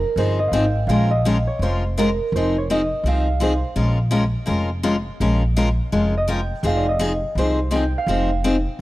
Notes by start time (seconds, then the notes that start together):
Already playing: A#4 C5
0.16 G1 F3 C4 D#4 G#4 C5
0.39 D#5
0.48 G#1 F5
0.53 F3 C4 D#4 G#4 G5
0.87 A#1 F3 G#3 C#4 F4 A#4 F5
1.11 D#5
1.25 F3 G#3 C#4 F4 A#4
1.47 C#5
1.59 F1 F3 G#3 C#4 F4 A#4 C5
1.98 F3 G#3 C#4 F4 A#4
2.32 F1 F3 C4 C5
2.36 D#4 G#4
2.58 C#5
2.70 F3 C4 D#4 G#4 D#5
3.04 C2 F3 C4 D#4 G#4
3.08 F5
3.40 F3 C4 D#4 G#4 C5
3.76 A#1 F3 G#3 C#4 F4 A#4
4.11 F3 G#3 C#4 F4 A#4
4.46 F1 F3 G#3 C#4 F4 A#4
4.83 F3 G#3 C#4 F4 A#4
5.20 A#1 F3 G#3 C#4 F4 A#4
5.56 F3 G#3 C#4 F4 A#4
5.92 F1 F3 G#3 C#4 F4 A#4
6.17 D#5
6.28 F3 G#3 C#4 F4 A#4 G5
6.63 F1 F3 C4 D#4 G#4 F5
6.77 D5
6.89 D#5
6.99 F3 C4 D#4 G#4
7.35 C2 F3 C4 D#4 G#4 C5
7.71 F3 C4 D#4 G#4
7.76 G5
7.98 F5
8.07 F1 F3 C4 D#4 G#4
8.44 F3 C4 D#4 G#4